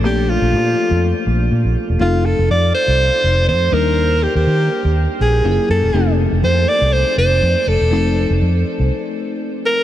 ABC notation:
X:1
M:4/4
L:1/16
Q:"Swing 16ths" 1/4=122
K:Fmix
V:1 name="Alto saxophone"
G2 F8 z6 | F2 A2 d2 c6 c2 B2- | B2 G G6 z _A4 =A2- | A2 z2 c2 d2 c2 c4 A2- |
A4 z8 z2 B2 |]
V:2 name="FM electric piano"
[F,A,B,CDA]16 | [F,A,CEA]12- [F,A,CEA]2 [G,B,DEB]2- | [G,B,DEB]12 [_G,B,_D_F=G_A]4 | [F,A,CEA]16 |
[F,A,CEA]16 |]
V:3 name="Fingered electric bass" clef=bass
B,,,3 B,,, B,,2 z F,,2 z B,,,2 B,, B,,, z =E,,, | F,,,3 F,,, F,,2 z C,,2 z F,,,2 F,,2 E,,2- | E,,3 E,, E,2 z E,,2 z B,,,2 _G,,, z _G,, _F,,, | F,,,3 F,,, F,,2 z C,,2 z F,,,2 F,, z F,,, =E,,, |
F,,,3 F,,, F,,2 z C,, z8 |]